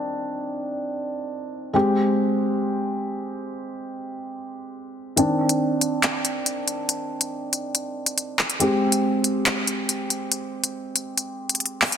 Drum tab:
HH |--------------------------------|--------------------------------|--------------------------------|x-----x-----x---x---x---x---x---|
CP |--------------------------------|--------------------------------|--------------------------------|----------------x---------------|

HH |x-----x-----x---x-----x-x-----x-|x-----x-----x---x---x---x---x---|x-----x-----x---x-----xxxx--o-x-|
CP |----------------------------x---|----------------x---------------|----------------------------x---|